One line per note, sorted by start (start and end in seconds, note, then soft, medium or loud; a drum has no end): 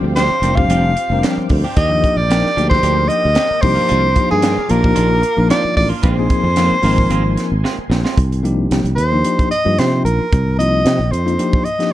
0.00 0.28 D2 medium
0.00 0.24 F3 medium
0.00 0.24 G3 medium
0.00 0.24 C4 medium
0.00 0.24 D4 medium
0.00 0.24 G4 medium
0.00 1.73 C5 medium
0.00 1.73 F5 medium
0.00 1.74 G5 medium
0.00 5.99 D6 medium
0.04 muted clean electric guitar stroke soft
0.16 0.33 F3 soft
0.16 0.33 C4 medium
0.16 0.33 D4 soft
0.16 0.34 G4 medium
0.16 0.57 C5 medium
0.16 snare loud
0.16 closed hi-hat medium
0.29 muted fretless electric bass stroke soft
0.42 0.67 F1 medium
0.42 0.57 F3 medium
0.42 0.52 F3 medium
0.42 0.52 G3 medium
0.42 0.57 C4 medium
0.42 0.52 C4 medium
0.42 0.57 D4 medium
0.42 0.53 D4 medium
0.42 0.57 G4 medium
0.42 0.53 A#4 medium
0.42 closed hi-hat medium
0.55 0.90 F3 medium
0.55 0.91 G3 medium
0.55 0.91 C4 medium
0.55 0.91 D4 medium
0.55 0.91 G4 medium
0.55 1.49 F5 medium
0.55 muted clean electric guitar stroke soft
0.55 kick medium
0.69 0.94 F1 medium
0.69 0.84 F3 medium
0.69 0.84 C4 medium
0.69 0.84 D4 medium
0.69 0.83 G4 medium
0.69 closed hi-hat medium
0.84 muted clean electric guitar stroke soft
0.97 muted clean electric guitar stroke soft
0.97 closed hi-hat medium
1.10 1.22 F1 medium
1.10 1.62 F3 medium
1.10 1.62 G3 medium
1.10 1.62 C4 medium
1.10 1.62 D4 medium
1.10 1.62 A#4 medium
1.23 1.37 F3 soft
1.23 1.37 C4 medium
1.23 1.37 D4 medium
1.23 1.37 G4 medium
1.23 snare loud
1.23 closed hi-hat medium
1.38 muted fretless electric bass stroke soft
1.38 muted clean electric guitar stroke soft
1.49 1.63 D2 medium
1.49 muted clean electric guitar stroke soft
1.49 kick medium
1.49 open hi-hat medium
1.64 1.76 C4 soft
1.64 1.76 D4 soft
1.64 1.77 G4 medium
1.75 2.01 D#2 medium
1.75 1.91 A#3 medium
1.75 1.91 D4 medium
1.75 1.90 G4 medium
1.75 8.13 A#4 medium
1.75 2.18 D#5 loud
1.75 3.61 G5 medium
1.75 kick loud
1.75 closed hi-hat medium
1.90 2.16 F3 medium
1.90 2.16 A#3 medium
1.90 2.16 D4 medium
1.90 2.16 D#4 medium
1.90 2.17 G4 medium
1.90 muted clean electric guitar stroke soft
2.04 muted clean electric guitar stroke soft
2.04 kick medium
2.04 closed hi-hat soft
2.16 2.42 A#1 medium
2.16 2.69 D5 medium
2.16 muted clean electric guitar stroke soft
2.29 2.47 F3 medium
2.29 2.46 A#3 medium
2.29 2.48 A#3 medium
2.29 2.47 D4 medium
2.29 2.48 D4 medium
2.29 2.48 D#4 medium
2.29 2.47 G4 medium
2.29 2.48 A#4 medium
2.29 snare loud
2.29 closed hi-hat medium
2.46 snare soft
2.56 2.82 D2 medium
2.56 3.25 F3 medium
2.56 2.71 A#3 medium
2.56 3.26 A#3 medium
2.56 2.70 D4 medium
2.56 3.26 D4 medium
2.56 3.26 D#4 medium
2.56 2.70 G4 medium
2.56 3.26 G4 medium
2.56 closed hi-hat medium
2.69 3.10 C5 medium
2.69 muted clean electric guitar stroke soft
2.69 kick medium
2.69 snare soft
2.83 3.08 D2 medium
2.83 2.97 A#3 medium
2.83 2.97 D4 medium
2.83 2.97 G4 medium
2.83 closed hi-hat medium
2.98 muted clean electric guitar stroke soft
3.08 3.63 D#5 loud
3.08 muted clean electric guitar stroke soft
3.08 closed hi-hat soft
3.25 3.36 D2 medium
3.35 3.50 A#3 medium
3.35 3.50 D4 soft
3.35 3.49 G4 medium
3.35 snare loud
3.35 closed hi-hat medium
3.50 muted clean electric guitar stroke soft
3.50 muted fretless electric bass stroke soft
3.62 3.76 C2 medium
3.62 4.06 F3 medium
3.62 4.06 A#3 medium
3.62 4.07 D4 medium
3.62 4.07 D#4 medium
3.62 4.07 G4 medium
3.62 4.30 C5 loud
3.62 6.01 F5 medium
3.62 muted clean electric guitar stroke soft
3.62 kick medium
3.62 open hi-hat medium
3.75 3.88 A#3 soft
3.75 3.88 D4 soft
3.75 3.88 F4 soft
3.88 4.16 C2 medium
3.88 4.03 D#3 medium
3.88 4.03 A#3 medium
3.88 4.03 D4 medium
3.88 4.02 F4 medium
3.88 closed hi-hat medium
4.03 muted clean electric guitar stroke soft
4.16 4.51 F3 medium
4.16 4.51 A#3 medium
4.16 4.51 D4 medium
4.16 4.52 D#4 medium
4.16 4.52 G4 medium
4.16 muted clean electric guitar stroke soft
4.16 kick medium
4.16 closed hi-hat medium
4.30 4.56 G2 medium
4.30 4.71 G#4 medium
4.30 muted clean electric guitar stroke soft
4.42 4.59 D#3 medium
4.42 4.60 A#3 medium
4.42 4.60 D4 medium
4.42 4.60 F4 medium
4.42 snare loud
4.42 closed hi-hat medium
4.58 muted fretless electric bass stroke soft
4.69 4.95 A#1 medium
4.69 4.84 D#3 medium
4.69 4.79 F3 medium
4.69 4.79 A#3 medium
4.69 4.83 A#3 medium
4.69 4.79 D4 medium
4.69 4.82 D4 medium
4.69 4.79 D#4 medium
4.69 4.82 F4 medium
4.69 4.79 G4 medium
4.69 5.50 A#4 loud
4.69 closed hi-hat medium
4.83 5.17 F3 medium
4.83 5.17 A#3 medium
4.83 5.18 D4 medium
4.83 5.18 D#4 medium
4.83 5.18 G4 medium
4.83 muted clean electric guitar stroke soft
4.83 kick medium
4.95 5.22 A#1 medium
4.95 5.10 D#3 medium
4.95 5.09 A#3 medium
4.95 5.09 D4 medium
4.95 5.08 F4 medium
4.95 closed hi-hat medium
5.10 muted clean electric guitar stroke soft
5.22 muted clean electric guitar stroke soft
5.22 closed hi-hat medium
5.37 5.50 A#1 medium
5.37 5.88 F3 medium
5.37 5.88 A#3 medium
5.37 5.88 D4 medium
5.37 5.89 D#4 medium
5.37 5.88 F4 medium
5.49 5.64 D#3 soft
5.49 5.64 A#3 medium
5.49 5.63 D4 medium
5.49 5.63 F4 medium
5.49 5.75 D5 medium
5.49 snare loud
5.49 closed hi-hat medium
5.64 muted clean electric guitar stroke soft
5.64 muted fretless electric bass stroke soft
5.76 5.90 A1 medium
5.76 5.89 D5 medium
5.76 muted clean electric guitar stroke soft
5.76 kick medium
5.76 open hi-hat medium
5.89 6.02 A#3 soft
5.89 6.03 D4 soft
5.89 6.02 F4 soft
6.02 6.29 A#1 loud
6.02 6.17 D#3 medium
6.02 6.17 G#3 medium
6.02 6.16 C4 medium
6.02 6.16 F4 medium
6.02 7.59 C5 medium
6.02 8.15 G#5 medium
6.02 8.15 C6 medium
6.02 kick loud
6.02 closed hi-hat medium
6.18 6.43 F3 medium
6.18 6.43 A#3 medium
6.18 6.44 C4 medium
6.18 6.44 D#4 medium
6.18 6.44 G#4 medium
6.30 muted clean electric guitar stroke soft
6.30 kick medium
6.30 closed hi-hat soft
6.43 6.69 F2 medium
6.43 muted clean electric guitar stroke soft
6.56 6.74 D#3 soft
6.56 6.74 F3 medium
6.56 6.74 G#3 medium
6.56 6.74 A#3 medium
6.56 6.75 C4 medium
6.56 6.74 C4 medium
6.56 6.75 D#4 medium
6.56 6.74 F4 medium
6.56 6.75 A#4 medium
6.56 snare loud
6.56 closed hi-hat medium
6.72 muted fretless electric bass stroke soft
6.82 7.08 G#1 medium
6.82 6.98 D#3 medium
6.82 7.52 F3 medium
6.82 6.98 G#3 medium
6.82 7.52 A#3 medium
6.82 7.52 C4 medium
6.82 6.97 C4 medium
6.82 7.53 D#4 medium
6.82 6.97 F4 medium
6.82 7.53 A#4 loud
6.82 open hi-hat medium
6.98 muted clean electric guitar stroke soft
6.98 kick medium
7.10 7.35 G#1 medium
7.10 7.25 D#3 medium
7.10 7.24 G#3 medium
7.10 7.24 C4 loud
7.10 7.23 F4 medium
7.10 closed hi-hat medium
7.24 muted clean electric guitar stroke soft
7.37 muted clean electric guitar stroke soft
7.37 snare soft
7.37 closed hi-hat medium
7.52 7.63 G#1 medium
7.64 7.78 D#3 medium
7.64 7.77 G#3 medium
7.64 7.76 C4 medium
7.64 7.76 F4 medium
7.64 snare medium
7.77 muted clean electric guitar stroke soft
7.77 muted fretless electric bass stroke soft
7.90 8.03 A#1 medium
7.90 muted clean electric guitar stroke soft
7.90 snare medium
8.04 8.18 G#3 soft
8.04 8.17 C4 soft
8.04 8.17 F4 medium
8.04 snare medium
8.17 8.67 C2 medium
8.17 kick medium
8.17 closed hi-hat medium
8.32 closed hi-hat soft
8.43 8.87 F3 medium
8.43 8.87 A#3 medium
8.43 8.87 D4 medium
8.43 8.88 D#4 medium
8.43 8.88 G4 medium
8.43 closed hi-hat soft
8.71 8.84 C2 medium
8.71 snare medium
8.71 closed hi-hat medium
8.84 8.96 C2 medium
8.84 closed hi-hat soft
8.95 9.22 D#2 medium
8.95 9.46 C5 medium
8.95 closed hi-hat medium
9.12 9.20 F3 medium
9.12 9.20 A#3 medium
9.12 9.20 D4 medium
9.12 9.20 D#4 medium
9.12 9.20 G4 medium
9.24 9.50 F3 medium
9.24 9.50 A#3 medium
9.24 9.50 D4 medium
9.24 9.50 D#4 medium
9.24 9.50 G4 medium
9.24 closed hi-hat medium
9.39 kick medium
9.39 closed hi-hat soft
9.51 9.80 D#5 medium
9.51 closed hi-hat medium
9.65 9.77 G2 medium
9.65 10.24 F3 medium
9.65 10.24 A#3 medium
9.65 10.24 D4 medium
9.65 10.25 D#4 medium
9.65 10.25 F4 medium
9.79 10.03 C3 medium
9.79 10.04 C5 medium
9.79 snare medium
9.79 closed hi-hat medium
10.05 10.18 A#1 medium
10.05 10.54 A#4 medium
10.05 closed hi-hat medium
10.20 muted fretless electric bass stroke soft
10.33 10.82 C2 medium
10.33 kick loud
10.33 closed hi-hat medium
10.58 11.01 F3 medium
10.58 11.01 A#3 medium
10.58 11.02 C4 medium
10.58 11.02 D#4 medium
10.58 11.02 F4 medium
10.58 11.13 D#5 medium
10.58 closed hi-hat medium
10.85 10.98 C3 medium
10.85 snare loud
10.85 closed hi-hat medium
10.99 11.11 A#1 medium
11.11 11.37 F2 medium
11.11 11.66 C5 medium
11.11 closed hi-hat medium
11.25 11.33 F3 medium
11.25 11.34 A#3 medium
11.25 11.34 D4 medium
11.25 11.34 D#4 medium
11.25 11.34 F4 medium
11.25 closed hi-hat soft
11.38 11.64 F3 medium
11.38 11.64 A#3 medium
11.38 11.64 D4 medium
11.38 11.64 D#4 medium
11.38 11.65 G4 medium
11.38 closed hi-hat medium
11.53 kick medium
11.64 11.93 D#5 medium
11.64 closed hi-hat soft
11.79 11.93 F3 medium
11.79 11.93 A#3 medium
11.79 11.93 D4 medium
11.79 11.93 D#4 medium
11.79 11.93 G4 medium
11.79 snare soft
11.79 closed hi-hat soft